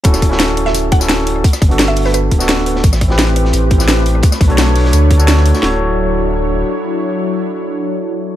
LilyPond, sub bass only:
\new Staff \with { instrumentName = "Sub bass" } { \clef bass \time 4/4 \key d \major \tempo 4 = 172 d,,2 d,,2 | r8 g,,16 g,,4.~ g,,16 d,,4. | a,,2 a,,2 | r8 b,,16 b,,4~ b,,16 d,4.~ d,16 r16 |
d,,2. r4 | r1 | }